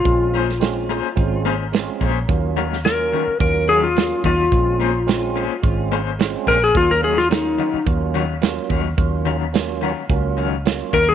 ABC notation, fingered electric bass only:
X:1
M:4/4
L:1/16
Q:"Swing 16ths" 1/4=108
K:Ebdor
V:1 name="Fingered electric bass" clef=bass
B,,,8 A,,,6 B,,,2 | E,,6- E,, z E,,6 E,,2 | B,,,8 A,,,6 B,,,2 | E,,6- E,, z E,,6 E,,2 |
E,,8 D,,6 E,,2 |]